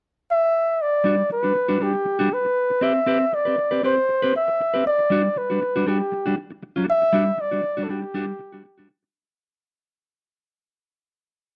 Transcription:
0.31 E5
0.82 D5
1.04 G3 D4 F#4
1.18 muted clean electric guitar stroke
1.30 B4, muted clean electric guitar stroke
1.43 G3 D4 F#4
1.55 muted clean electric guitar stroke
1.68 G3 D4 F#4
1.80 G3 D4 F#4 G4
1.94 muted clean electric guitar stroke
2.05 muted clean electric guitar stroke
2.19 G3 D4 F#4
2.31 B4, muted clean electric guitar stroke
2.45 muted clean electric guitar stroke
2.70 muted clean electric guitar stroke
2.81 C4 G4 B4 E5
2.95 muted clean electric guitar stroke
3.06 C4 G4 B4
3.20 muted clean electric guitar stroke
3.33 D5, muted clean electric guitar stroke
3.45 C4 G4 B4
3.58 muted clean electric guitar stroke
3.71 C4 G4 B4
3.83 C4 G4 B4 C5
3.97 muted clean electric guitar stroke
4.09 muted clean electric guitar stroke
4.22 C4 G4 B4
4.35 E5, muted clean electric guitar stroke
4.48 muted clean electric guitar stroke
4.60 muted clean electric guitar stroke
4.74 C4 G4 B4
4.86 D5, muted clean electric guitar stroke
4.99 muted clean electric guitar stroke
5.10 G3 D4 F#4
5.25 muted clean electric guitar stroke
5.36 B4, muted clean electric guitar stroke
5.50 G3 D4 F#4
5.61 muted clean electric guitar stroke
5.76 G3 D4 F#4
5.86 G3 D4 F#4 G4
6.00 muted clean electric guitar stroke
6.12 muted clean electric guitar stroke
6.26 G3 D4 F#4
6.37 muted clean electric guitar stroke
6.51 muted clean electric guitar stroke
6.63 muted clean electric guitar stroke
6.76 G3 D4 F#4
6.88 E5, muted clean electric guitar stroke
7.02 muted clean electric guitar stroke
7.13 G3 D4 F#4
7.26 muted clean electric guitar stroke
7.37 D5, muted clean electric guitar stroke
7.51 G3 D4 F#4
7.63 muted clean electric guitar stroke
7.77 G3 D4 F#4
7.84 A4
7.89 G3 D4 F#4 G4
8.02 muted clean electric guitar stroke
8.14 G3 D4 F#4
8.27 muted clean electric guitar stroke
8.39 muted clean electric guitar stroke
8.52 G3 D4 F#4
8.65 muted clean electric guitar stroke
8.78 G3 D4 F#4
8.90 muted clean electric guitar stroke
9.03 muted clean electric guitar stroke

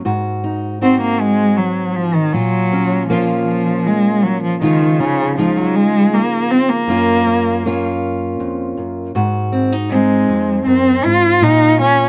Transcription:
0.05 G#2 F#4
0.44 D#4
0.81 C4 D#4 F#4
1.01 A#3
1.20 G#3
1.57 F#3
1.95 F3
2.14 D#3
2.33 A#2 F#3 F4
2.73 C#4
3.08 F3 A#3 C#4 F4
3.46 F3
3.86 G#3
4.23 F#3
4.43 F3
4.61 C#3 D#3 F3 G#3 D#4 F4
4.99 C#3 D#4
5.37 F3 G#3 D#4 F4
5.57 F#3
5.76 G#3
6.14 A#3
6.51 C4
6.70 A#3
6.88 F#2 A#3 C#4 F4
7.26 C#4
7.66 A#3 C#4 F4
8.40 F2
8.77 F#2
9.15 G#2 F#4
9.52 C4
9.72 D#4
9.90 G#3 C4 D#4
10.29 F2
10.66 F#2 C4
11.05 G#2 F4
11.41 A#2 D#4 F4
11.80 C#4

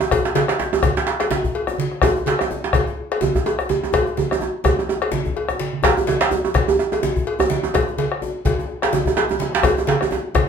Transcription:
0.00 bombo rim, djembe slap, djembe tone
0.11 bombo rim, bombo low, cowbell, low conga, djembe bass
0.25 djembe slap, djembe tone
0.35 cowbell, djembe slap, high conga
0.48 bombo rim, djembe slap
0.59 djembe slap, high conga, djembe tone
0.73 djembe tone
0.83 bombo rim, bombo low, cowbell, djembe slap, high conga, low conga, djembe bass
0.96 djembe slap, djembe tone
1.07 djembe slap
1.20 bombo rim, cowbell, djembe slap
1.31 djembe slap, djembe tone, high conga
1.44 bombo low, djembe bass, low conga
1.55 cowbell, djembe slap
1.67 bombo rim, djembe tone
1.78 djembe slap, high conga
1.92 bombo rim, djembe slap
2.02 bombo rim, bombo low, cowbell, djembe tone, low conga, djembe bass
2.16 djembe tone
2.26 cowbell, djembe slap, high conga
2.39 bombo rim, djembe tone
2.51 djembe tone, high conga
2.64 djembe slap
2.73 bombo rim, bombo low, cowbell, djembe slap, high conga, djembe bass, low conga
2.87 djembe tone
2.97 djembe slap
3.12 bombo rim, cowbell
3.21 djembe slap, djembe tone, high conga, djembe bass
3.35 bombo low, djembe tone, djembe bass, low conga
3.45 cowbell, djembe slap, djembe tone
3.59 bombo rim, djembe tone
3.69 djembe slap, high conga, djembe bass
3.82 bombo rim, djembe slap, djembe tone
3.93 bombo rim, bombo low, cowbell, djembe tone, djembe bass, low conga
4.06 djembe slap, djembe tone
4.17 bombo rim, djembe slap, high conga, djembe bass
4.31 bombo rim, djembe tone
4.41 djembe slap, djembe tone
4.64 bombo rim, bombo low, cowbell, djembe slap, high conga, djembe bass
4.79 bombo rim, djembe tone
4.88 bombo rim, djembe slap, high conga, djembe tone
5.01 bombo rim, cowbell, djembe slap, high conga
5.12 djembe slap, djembe tone, high conga
5.25 bombo low, djembe slap, djembe bass, low conga
5.36 bombo rim, cowbell
5.49 bombo rim, djembe slap, djembe tone, low conga
5.59 djembe slap, high conga
5.73 high conga
5.83 bombo rim, bombo low, cowbell, djembe slap, djembe bass, low conga
5.97 djembe tone, djembe bass
6.07 cowbell, djembe slap, high conga, djembe tone
6.21 bombo rim, djembe slap
6.31 djembe tone, high conga, djembe bass
6.45 djembe tone
6.54 bombo rim, bombo low, cowbell, djembe slap, high conga, djembe bass, low conga
6.68 djembe tone, djembe bass
6.79 djembe slap, djembe tone
6.92 cowbell, djembe tone
7.03 djembe slap, high conga, djembe tone
7.16 bombo low, low conga, djembe bass
7.27 cowbell, djembe slap
7.39 bombo rim, djembe tone, djembe bass
7.50 djembe slap, high conga, djembe tone
7.63 bombo rim, djembe slap, djembe tone
7.74 bombo rim, bombo low, cowbell, djembe tone, low conga, djembe bass
7.88 djembe tone
7.98 cowbell, djembe slap, high conga
8.12 bombo rim
8.21 high conga, djembe tone
8.45 bombo low, cowbell, djembe slap, high conga, low conga, djembe bass
8.59 djembe tone
8.69 djembe slap
8.82 bombo rim, cowbell, djembe slap
8.93 djembe slap, high conga, djembe tone
9.06 bombo low, djembe tone, djembe bass, low conga
9.17 cowbell, djembe slap
9.29 djembe tone
9.31 djembe tone
9.39 djembe slap, high conga, djembe tone
9.53 bombo rim, djembe slap
9.55 djembe slap
9.63 bombo rim, bombo low, cowbell, djembe tone, djembe bass, low conga
9.77 djembe tone
9.87 cowbell, djembe slap, high conga
10.01 bombo rim, djembe tone
10.11 djembe tone
10.35 bombo rim, bombo low, cowbell, djembe slap, high conga, low conga, djembe bass

